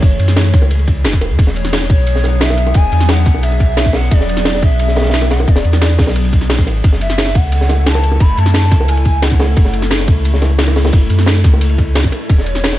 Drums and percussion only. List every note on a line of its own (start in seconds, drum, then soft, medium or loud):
0.02 kick loud
0.02 closed hi-hat medium
0.02 ride medium
0.19 closed hi-hat medium
0.19 ride medium
0.19 shaker medium
0.28 snare soft
0.36 snare loud
0.36 closed hi-hat medium
0.36 ride medium
0.46 snare soft
0.53 kick loud
0.53 snare soft
0.53 closed hi-hat medium
0.53 ride medium
0.53 shaker medium
0.62 high bongo medium
0.71 closed hi-hat medium
0.71 ride medium
0.79 ride soft
0.79 shaker soft
0.87 kick medium
0.87 closed hi-hat medium
0.87 ride medium
0.87 shaker medium
1.04 snare loud
1.04 closed hi-hat medium
1.04 ride medium
1.13 kick medium
1.13 snare soft
1.13 ride soft
1.13 shaker soft
1.21 closed hi-hat medium
1.21 ride medium
1.21 high bongo medium
1.21 shaker medium
1.39 kick loud
1.39 closed hi-hat medium
1.39 ride medium
1.47 snare medium
1.56 closed hi-hat medium
1.56 ride medium
1.56 shaker medium
1.65 snare soft
1.65 ride soft
1.73 snare loud
1.73 closed hi-hat medium
1.73 open hi-hat medium
1.83 snare medium
1.90 kick loud
1.90 closed hi-hat medium
1.90 ride medium
1.90 shaker medium
2.07 closed hi-hat medium
2.07 ride medium
2.15 snare medium
2.24 snare soft
2.24 closed hi-hat medium
2.24 ride medium
2.24 high bongo medium
2.24 shaker medium
2.41 snare loud
2.41 closed hi-hat medium
2.41 ride medium
2.50 high bongo medium
2.57 closed hi-hat medium
2.57 ride medium
2.57 shaker medium
2.67 high bongo medium
2.74 kick loud
2.74 closed hi-hat medium
2.74 ride medium
2.92 closed hi-hat medium
2.92 ride medium
2.92 shaker medium
3.00 snare soft
3.09 snare loud
3.09 closed hi-hat medium
3.09 ride medium
3.18 snare soft
3.26 kick loud
3.26 snare soft
3.26 closed hi-hat medium
3.26 ride medium
3.26 shaker medium
3.34 high bongo medium
3.43 closed hi-hat medium
3.43 ride medium
3.52 ride soft
3.60 kick medium
3.60 closed hi-hat medium
3.60 ride medium
3.60 shaker medium
3.77 snare loud
3.77 closed hi-hat medium
3.77 ride medium
3.86 kick medium
3.86 ride soft
3.93 snare loud
3.93 closed hi-hat medium
3.93 open hi-hat medium
3.93 high bongo medium
3.93 shaker medium
4.11 kick loud
4.11 closed hi-hat medium
4.11 ride medium
4.20 snare medium
4.29 closed hi-hat medium
4.29 ride medium
4.29 shaker medium
4.37 snare soft
4.37 ride soft
4.45 snare loud
4.45 closed hi-hat medium
4.45 open hi-hat medium
4.55 snare medium
4.62 kick loud
4.62 closed hi-hat medium
4.62 ride medium
4.62 shaker medium
4.79 closed hi-hat medium
4.79 ride medium
4.88 snare soft
4.95 snare medium
4.95 closed hi-hat medium
4.95 open hi-hat medium
4.95 high bongo medium
4.95 shaker medium
5.01 snare medium
5.01 open hi-hat medium
5.05 snare medium
5.05 open hi-hat medium
5.09 snare medium
5.09 open hi-hat medium
5.14 snare loud
5.14 closed hi-hat medium
5.14 ride medium
5.22 high bongo medium
5.31 snare medium
5.31 closed hi-hat medium
5.31 ride medium
5.31 shaker medium
5.39 ride soft
5.39 high bongo medium
5.48 kick loud
5.48 closed hi-hat medium
5.48 ride medium
5.56 snare loud
5.56 ride medium
5.56 shaker soft
5.65 closed hi-hat medium
5.65 ride soft
5.65 shaker medium
5.73 snare soft
5.73 ride medium
5.73 high bongo medium
5.81 snare loud
5.81 closed hi-hat loud
5.81 ride medium
5.90 snare soft
5.90 shaker soft
5.99 kick loud
5.99 snare loud
5.99 snare soft
5.99 closed hi-hat medium
5.99 open hi-hat medium
5.99 shaker medium
6.07 snare loud
6.07 open hi-hat medium
6.07 high bongo medium
6.16 closed hi-hat loud
6.16 ride medium
6.24 ride soft
6.24 shaker soft
6.33 kick medium
6.33 closed hi-hat medium
6.33 ride medium
6.33 shaker medium
6.41 snare soft
6.50 snare medium
6.50 snare loud
6.50 closed hi-hat medium
6.50 open hi-hat medium
6.58 kick medium
6.58 snare medium
6.58 snare soft
6.58 shaker soft
6.67 closed hi-hat medium
6.67 ride medium
6.67 high bongo medium
6.67 shaker medium
6.84 kick loud
6.84 closed hi-hat medium
6.84 ride medium
6.93 snare soft
7.01 closed hi-hat medium
7.01 ride medium
7.01 shaker medium
7.10 snare soft
7.10 ride soft
7.18 snare loud
7.18 closed hi-hat loud
7.18 open hi-hat medium
7.27 snare medium
7.35 kick loud
7.35 closed hi-hat medium
7.35 ride medium
7.35 shaker medium
7.52 closed hi-hat loud
7.52 ride medium
7.61 snare medium
7.69 snare soft
7.69 closed hi-hat medium
7.69 ride medium
7.69 high bongo medium
7.69 shaker medium
7.86 snare loud
7.86 closed hi-hat loud
7.86 ride medium
7.95 high bongo loud
8.03 closed hi-hat medium
8.03 ride medium
8.03 shaker medium
8.12 high bongo medium
8.20 kick loud
8.20 closed hi-hat medium
8.20 ride medium
8.37 closed hi-hat medium
8.37 ride medium
8.37 shaker medium
8.46 snare soft
8.54 snare loud
8.54 closed hi-hat medium
8.54 ride medium
8.63 snare soft
8.71 kick loud
8.71 snare soft
8.71 closed hi-hat medium
8.71 ride medium
8.71 shaker medium
8.80 high bongo medium
8.88 closed hi-hat medium
8.88 ride medium
8.97 ride soft
9.05 kick medium
9.05 closed hi-hat medium
9.05 ride medium
9.05 shaker medium
9.22 snare loud
9.22 closed hi-hat medium
9.22 ride medium
9.31 kick medium
9.31 ride soft
9.39 snare loud
9.39 closed hi-hat medium
9.39 open hi-hat medium
9.39 high bongo medium
9.39 shaker medium
9.57 kick loud
9.57 closed hi-hat medium
9.57 ride medium
9.65 snare soft
9.73 closed hi-hat medium
9.73 ride medium
9.73 shaker medium
9.82 snare soft
9.82 ride soft
9.91 snare loud
9.91 closed hi-hat medium
9.91 open hi-hat medium
9.99 snare medium
10.08 kick loud
10.08 closed hi-hat medium
10.08 ride medium
10.08 shaker medium
10.25 closed hi-hat medium
10.25 ride medium
10.34 snare medium
10.42 snare soft
10.42 closed hi-hat medium
10.42 ride medium
10.42 high bongo medium
10.42 shaker medium
10.59 snare loud
10.59 closed hi-hat medium
10.59 ride medium
10.68 high bongo medium
10.76 snare loud
10.76 closed hi-hat medium
10.76 open hi-hat medium
10.76 shaker medium
10.84 snare loud
10.84 open hi-hat medium
10.84 high bongo medium
10.93 kick loud
10.93 closed hi-hat medium
10.93 ride medium
11.10 closed hi-hat medium
11.10 ride medium
11.10 shaker medium
11.19 snare soft
11.26 snare loud
11.26 closed hi-hat medium
11.26 ride medium
11.36 snare soft
11.44 kick loud
11.44 snare soft
11.44 closed hi-hat medium
11.44 ride medium
11.44 shaker medium
11.53 high bongo medium
11.61 closed hi-hat medium
11.61 ride medium
11.70 ride soft
11.70 shaker soft
11.78 kick medium
11.78 closed hi-hat medium
11.78 ride medium
11.78 shaker medium
11.95 snare loud
11.95 closed hi-hat medium
11.95 ride medium
12.04 kick medium
12.04 snare soft
12.04 ride soft
12.04 shaker soft
12.12 closed hi-hat medium
12.12 ride medium
12.12 high bongo medium
12.12 shaker medium
12.30 kick loud
12.30 closed hi-hat medium
12.30 ride medium
12.38 snare soft
12.46 closed hi-hat medium
12.46 ride medium
12.46 shaker medium
12.55 snare soft
12.55 ride soft
12.64 snare loud
12.64 closed hi-hat medium
12.64 open hi-hat medium
12.72 snare medium